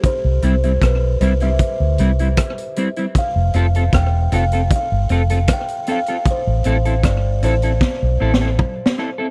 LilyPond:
<<
  \new Staff \with { instrumentName = "Kalimba" } { \time 4/4 \key c \major \tempo 4 = 77 c''4 b'8 c''16 e''4.~ e''16 r8 | f''4 g''8 f''8 f''4 g''8 f''8 | c''4 d''8 c''2 r8 | }
  \new Staff \with { instrumentName = "Clean electric guitar" } { \time 4/4 \key c \major r8 <g c' e'>16 <g c' e'>16 r8 <g c' e'>16 <g c' e'>16 r8 <g c' e'>16 <g c' e'>16 r8 <g c' e'>16 <g c' e'>16 | r8 <c' f' a'>16 <c' f' a'>16 r8 <c' f' a'>16 <c' f' a'>16 r8 <c' f' a'>16 <c' f' a'>16 r8 <c' f' a'>16 <c' f' a'>16 | r8 <c' e' a'>16 <c' e' a'>16 r8 <c' e' a'>16 <c' e' a'>16 r8 <c' e' a'>16 <c' e' a'>16 r8 <c' e' a'>16 <c' e' a'>16 | }
  \new Staff \with { instrumentName = "Fingered electric bass" } { \clef bass \time 4/4 \key c \major r16 c,16 c,8 b,,8 c,8 r16 d,16 c,8 r4 | r16 f,,16 f,,8 e,,8 f,,8 r16 g,,16 f,,8 r4 | r16 a,,16 a,,8 g,,8 a,,8 r16 b,,16 a,,8 r4 | }
  \new DrumStaff \with { instrumentName = "Drums" } \drummode { \time 4/4 <hh bd>8 hh16 hh16 <hh bd ss>8 hh16 hh16 <hh bd>8 hh16 hh16 <hh bd ss>16 hh16 hh16 hh16 | <hh bd>8 hh16 hh16 <hh bd ss>8 hh16 hh16 <hh bd>8 hh16 hh16 <hh bd ss>16 hh16 hh16 hh16 | <hh bd>8 hh16 hh16 <hh bd ss>8 hh16 hh16 \tuplet 3/2 { <bd sn>8 r8 sn8 <bd toml>8 sn8 r8 } | }
>>